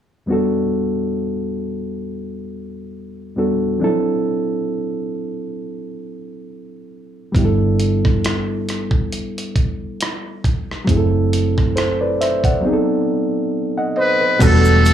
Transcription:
0.26 reed electric piano E2 G3 B3 D4
0.30 reed electric piano F#4 A4
3.36 reed electric piano E2 G3 B3 D4 F#4 A4
3.79 reed electric piano F3 C4 D4
3.83 reed electric piano F#3 E4 A4
7.32 fingered electric bass G1, reed electric piano G3 B3 D4, kick, closed hi-hat
7.37 reed electric piano E4 G4
7.45 reed electric piano A4
7.80 closed hi-hat
8.05 kick, cross-stick
8.24 cross-stick, closed hi-hat
8.69 cross-stick, closed hi-hat
8.91 kick
9.12 closed hi-hat
9.38 closed hi-hat
9.56 kick, closed hi-hat
10.01 cross-stick, closed hi-hat
10.44 kick, closed hi-hat
10.71 cross-stick
10.85 fingered electric bass F#1, reed electric piano F#3 A3 C4, kick
10.89 reed electric piano E4 G#4, closed hi-hat
10.97 reed electric piano A4
11.33 closed hi-hat
11.58 kick, cross-stick
11.76 reed electric piano A4 C5, cross-stick, closed hi-hat
12.01 reed electric piano B4 D5
12.21 reed electric piano C5 E5, cross-stick, closed hi-hat
12.44 reed electric piano D5 F#5, kick, closed hi-hat
12.60 reed electric piano F#3 B3 C4
12.65 reed electric piano D#4 G#4
12.73 reed electric piano A4
13.78 reed electric piano D#5 F#5
13.97 muted trumpet B4, reed electric piano C5 D#5
14.21 reed electric piano B4
14.39 fingered electric bass E1, string section D3 G3 A3 F#4, reed electric piano G3 B3 D4 F#4 A4, kick, closed hi-hat, crash, shaker
14.44 muted trumpet A4
14.65 shaker
14.85 closed hi-hat, shaker

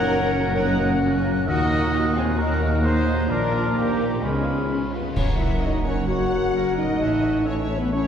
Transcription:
Already playing: double bass section F#1, cello section F#2, harp F#2 A#3 A#4, trombone section A#2 F#3, violin section A#3 A#4, french horn section A#3 C#4, viola section D#4, clarinet C#5, trumpet section F#5, oboe A#5, flute F#6
0.11 violin section C#4 F#4, viola section C#4, harp F#4
0.26 harp A#4
0.34 violin section A#3 A#4
0.41 harp F#4
0.56 trombone section A#2 F#3, harp C#3, french horn section A#3 C#4, violin section C#4 F#4 A#4, viola section D#4, clarinet C#5, trumpet section F#5
0.71 harp A#3
0.81 violin section A#3 A#4
0.87 harp A#4
1.02 viola section C#4, violin section C#4 F#4, harp F#4
1.17 harp A#4
1.25 violin section A#3 A#4
1.33 harp F#4
1.46 double bass section D#2, cello section D#2, trombone section A#2 F#3, harp D#3, french horn section A#3 D#4, viola section D#4, violin section D#4 F#4, clarinet A#4, trumpet section D#5, oboe A#5
1.63 harp A#3
1.70 violin section A#3 D#4
1.78 harp A#4
1.92 violin section D#4 F#4, harp F#4
2.09 harp A#4
2.15 violin section A#3 C4 D#4, clarinet F4, trumpet section G#4
2.24 harp F#4
2.38 trombone section A#2 F#3, french horn section A#3 D#4, violin section D#4 F#4, harp D#4, clarinet F#4, viola section F#4, trumpet section A#4
2.54 harp A#3
2.61 violin section A#3 D#4
2.69 harp A#4
2.83 violin section D#4 F#4, viola section D#4, harp F#4, clarinet G#4, trumpet section C5
3.00 harp A#4
3.07 violin section A#3 D#4
3.29 double bass section A#1, cello section A#2, harp A#2, trombone section A#2 F3, french horn section A#3 D5, violin section D4, clarinet F4, viola section F4, trumpet section A#4, flute D6
3.46 harp A#3
3.53 violin section A#3 F4
3.62 harp A#4
3.74 violin section A#3 D4, clarinet D#4, viola section G4, trumpet section G4, harp D5
3.92 harp A#4
4.00 violin section A#3 F4
4.08 harp D4
4.21 double bass section C#2, trombone section G#2 G#3, cello section C#3, harp C#3, violin section G#3 C#4, french horn section B3 C#4, clarinet C#4, trumpet section F4, viola section G#4, oboe B5, flute C#6
4.39 harp B3
4.46 violin section B3 F4
4.55 harp G#4
4.69 violin section C#4, french horn section C#4, harp B4
4.85 harp G#4
4.92 violin section B3 F4 B4, french horn section B3
4.99 harp F#2 C#4
5.03 harp A#3
5.08 harp C#4
5.12 cello section F#2, viola section F#4 C#5, harp A#4, violin section C#5, trumpet section C#5, clarinet F#5, flute A#5
5.16 double bass section F#1, trombone section C#3 A#3, french horn section C#4, concert bass drum, crash
5.38 french horn section E4, viola section A#4 F#5, violin section E5
5.61 french horn section D#4, viola section F#4 C#5, violin section D#5
5.84 french horn section C#4, viola section A#4 F#5, violin section C#5
6.07 french horn section F#4, viola section F#4 C#5, oboe C#5, violin section F#5, clarinet F#5, flute A#5
6.32 viola section A#4 F#5
6.55 viola section F#4 C#5, oboe A#4
6.77 french horn section D#4, viola section A#4 F#5, violin section D#5
6.83 harp A2
6.88 harp A3
7.00 double bass section A1, cello section A2, trombone section E3 A3, viola section E4 C#5, clarinet E5, oboe F#5, flute A5
7.23 viola section A4 E5
7.46 french horn section C#4, viola section E4 C#5, violin section C#5, clarinet E5, oboe E5, flute A5
7.61 french horn section C#4, violin section C#5
7.70 viola section A4 E5
7.76 french horn section B3, violin section B4
7.91 french horn section C#4, viola section E4 C#5, violin section C#5, oboe C#5, clarinet E5, flute A5

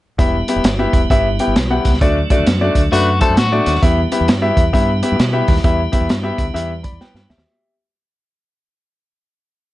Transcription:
0.18 fingered electric bass E1, tonewheel organ G3 B3 E4, grand piano B3 E4 G4 E5, kick, closed hi-hat
0.48 grand piano B3 E4 G4 E5, closed hi-hat
0.56 fingered electric bass E1
0.64 fingered electric bass G1, snare, closed hi-hat
0.79 grand piano B3 E4 G4 E5
0.93 fingered electric bass E1, kick, closed hi-hat
1.10 fingered electric bass G1, grand piano B3 E4 G4 E5, kick, closed hi-hat
1.39 grand piano B3 E4 G4 G5, closed hi-hat
1.47 fingered electric bass G1
1.56 fingered electric bass B1, snare, closed hi-hat
1.70 grand piano B3 E4 G4 F#5
1.85 fingered electric bass C#2, kick, snare, closed hi-hat
1.94 snare
2.01 fingered electric bass D2, tonewheel organ F#3 A3 D4, grand piano A3 D4 F#4 D5, kick, closed hi-hat
2.30 grand piano A3 D4 F#4 D5, kick, closed hi-hat
2.39 fingered electric bass D2
2.47 fingered electric bass F#2, snare, closed hi-hat
2.61 grand piano A3 D4 F#4 D5
2.75 fingered electric bass D2, kick, closed hi-hat
2.92 fingered electric bass F#2, grand piano A3 D4 F#4 B4, clean electric guitar F#4, closed hi-hat
3.21 grand piano A3 D4 F#4 C5, clean electric guitar A4, kick, closed hi-hat
3.29 fingered electric bass F#2
3.37 fingered electric bass A2, clean electric guitar F#4, snare, closed hi-hat
3.52 grand piano A3 D4 F#4 D5
3.66 fingered electric bass D#2, snare, closed hi-hat
3.75 snare
3.82 fingered electric bass E2, tonewheel organ G3 B3 E4, grand piano B3 E4 G4 E5, kick, closed hi-hat
4.12 grand piano B3 E4 G4 E5, closed hi-hat
4.21 fingered electric bass E2
4.28 fingered electric bass G2, snare, closed hi-hat
4.42 grand piano B3 E4 G4 E5
4.57 fingered electric bass E2, kick, closed hi-hat
4.73 fingered electric bass G2, grand piano B3 E4 G4 E5, kick, closed hi-hat
5.03 grand piano B3 E4 G4 E5, closed hi-hat
5.12 fingered electric bass G2
5.19 fingered electric bass B2, snare, closed hi-hat
5.33 grand piano B3 E4 G4 E5
5.48 fingered electric bass D#2, kick, snare, open hi-hat
5.57 snare
5.64 fingered electric bass E2, grand piano B3 E4 G4 E5, kick, closed hi-hat
5.92 grand piano B3 E4 G4 E5, kick, closed hi-hat
6.01 fingered electric bass E2
6.09 fingered electric bass G2, snare, closed hi-hat
6.23 grand piano B3 E4 G4 E5
6.38 fingered electric bass D2, kick, closed hi-hat
6.54 fingered electric bass E2, grand piano B3 E4 G4 E5, closed hi-hat
6.83 grand piano D5 B5, kick, closed hi-hat
6.92 fingered electric bass E2
7.01 grand piano B4 G5, snare
7.14 fingered electric bass G2, snare
7.29 fingered electric bass D2, grand piano G4 E5, snare
7.38 fingered electric bass D#2, snare

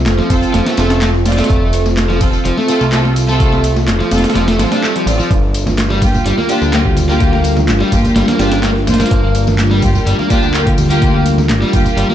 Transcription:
Already playing: analog synth pad C4 F4 A4
0.06 analog synth bass F1, snare, clap, closed hi-hat, tambourine
0.18 overdriven electric guitar F3, snare
0.30 analog synth bass F1, string section C4 F4 A4, kick, closed hi-hat, ride, tambourine
0.42 closed hi-hat, tambourine
0.54 analog synth bass F1, overdriven electric guitar F3, snare, closed hi-hat, tambourine
0.66 overdriven electric guitar A3, snare, closed hi-hat
0.77 analog synth bass F1, overdriven electric guitar A3, string section C4 F4 A4, snare, closed hi-hat, ride, tambourine
0.90 snare, closed hi-hat, tambourine
1.01 overdriven electric guitar A3, snare, clap, closed hi-hat, tambourine
1.15 snare
1.25 string section C4 F4 D5, snare, closed hi-hat, ride, tambourine
1.32 snare, closed hi-hat
1.38 overdriven electric guitar A3, snare, closed hi-hat, tambourine
1.44 snare, closed hi-hat
1.49 analog synth bass F1, kick, closed hi-hat, tambourine
1.73 closed hi-hat, ride, tambourine
1.86 snare, tambourine
1.97 snare, clap, closed hi-hat
2.10 overdriven electric guitar F3, snare
2.21 string section C4 F4 A4, kick, closed hi-hat, ride, tambourine
2.33 tambourine
2.45 analog synth bass F1, overdriven electric guitar F3, closed hi-hat, tambourine
2.58 overdriven electric guitar A3, snare
2.68 overdriven electric guitar A3, string section C4 F4 A4, closed hi-hat, ride, tambourine
2.81 analog synth bass C2, snare, tambourine
2.92 overdriven electric guitar A3, string section C4 F4 A4, snare, clap, closed hi-hat, tambourine
3.05 snare
3.16 closed hi-hat, ride, tambourine
3.29 overdriven electric guitar A3, string section C4 F4 A4, tambourine
3.40 kick, closed hi-hat, tambourine
3.53 snare
3.64 closed hi-hat, ride, tambourine
3.76 snare, tambourine
3.88 analog synth bass F1, snare, clap, closed hi-hat, tambourine
4.00 overdriven electric guitar F3, snare
4.11 analog synth bass F1, string section C4 F4 A4, snare, closed hi-hat, ride, tambourine
4.18 snare, closed hi-hat
4.24 snare, closed hi-hat, tambourine
4.30 snare, closed hi-hat
4.35 analog synth bass F1, overdriven electric guitar F3, snare, closed hi-hat, tambourine, swell
4.47 overdriven electric guitar A3, snare, closed hi-hat
4.59 analog synth bass A1, overdriven electric guitar F3, string section C4 F4 A4, snare, closed hi-hat, ride, tambourine
4.72 overdriven electric guitar D4, snare, closed hi-hat, tambourine
4.83 overdriven electric guitar A3, snare, clap, tambourine
4.96 overdriven electric guitar F3, closed hi-hat
5.06 analog synth bass A1, string section C4 F4 D5, closed hi-hat, ride, tambourine
5.19 overdriven electric guitar F3, tambourine
5.30 analog synth bass G1, analog synth pad G3 D4 F4 A#4, kick, closed hi-hat, tambourine
5.54 closed hi-hat, ride, tambourine
5.67 snare, tambourine, high conga
5.78 snare, clap, closed hi-hat, tambourine
5.90 overdriven electric guitar G3, snare
6.02 string section A#3 F4 G4, kick, closed hi-hat, ride, tambourine
6.14 tambourine, low conga
6.25 analog synth bass G1, overdriven electric guitar G3, closed hi-hat, tambourine
6.38 overdriven electric guitar A#3, snare, high conga
6.49 string section A#3 F4 G4, overdriven electric guitar D4, closed hi-hat, ride, tambourine
6.62 analog synth bass D2, tambourine
6.73 overdriven electric guitar A#3, string section A#3 F4 G4, snare, clap, closed hi-hat
6.85 kick
6.97 closed hi-hat, ride, tambourine, high conga, low conga
7.09 overdriven electric guitar A#3, string section A#3 F4 G4, tambourine
7.20 kick, closed hi-hat, tambourine
7.33 snare
7.44 closed hi-hat, ride, tambourine
7.57 snare, tambourine, high conga
7.68 analog synth bass G1, snare, clap, closed hi-hat, tambourine
7.80 overdriven electric guitar G3, snare
7.92 analog synth bass G1, string section A#3 F4 G4, kick, closed hi-hat, ride, tambourine
8.04 closed hi-hat, tambourine, low conga
8.16 analog synth bass G1, overdriven electric guitar G3, snare, closed hi-hat, tambourine
8.28 overdriven electric guitar A#3, snare, closed hi-hat, high conga
8.39 analog synth bass G1, string section A#3 F4 G4, overdriven electric guitar D4, snare, closed hi-hat, ride, tambourine
8.52 snare, closed hi-hat, tambourine
8.63 overdriven electric guitar A#3, snare, clap, closed hi-hat, tambourine
8.76 snare
8.87 string section A#3 F4 C5, snare, closed hi-hat, ride, tambourine, high conga, low conga
8.94 snare, closed hi-hat
9.00 overdriven electric guitar A#3, snare, closed hi-hat, tambourine
9.06 snare, closed hi-hat
9.11 analog synth bass G1, kick, closed hi-hat, tambourine
9.35 closed hi-hat, ride, tambourine
9.47 snare, tambourine, high conga
9.59 snare, clap, closed hi-hat, tambourine
9.71 overdriven electric guitar G3, snare
9.82 string section A#3 F4 G4, kick, closed hi-hat, ride, tambourine
9.94 tambourine, low conga
10.06 analog synth bass G1, overdriven electric guitar G3, closed hi-hat, tambourine
10.19 overdriven electric guitar A#3, snare, high conga
10.30 string section A#3 F4 G4, overdriven electric guitar D4, kick, closed hi-hat, ride, tambourine
10.43 analog synth bass D2, tambourine
10.54 string section A#3 F4 G4, overdriven electric guitar A#3, clap, closed hi-hat, tambourine
10.67 kick, closed hi-hat
10.77 ride, tambourine, high conga, low conga
10.90 string section A#3 F4 G4, overdriven electric guitar A#3, closed hi-hat, tambourine
11.02 kick, closed hi-hat, tambourine
11.26 closed hi-hat, ride, tambourine
11.38 snare, tambourine, high conga
11.50 analog synth bass G1, snare, clap, closed hi-hat, tambourine
11.62 overdriven electric guitar G3, snare
11.73 analog synth bass G1, string section A#3 F4 G4, kick, closed hi-hat, ride, tambourine
11.85 closed hi-hat, tambourine, low conga
11.97 analog synth bass G1, overdriven electric guitar G3, closed hi-hat, tambourine
12.09 overdriven electric guitar A#3, snare, high conga

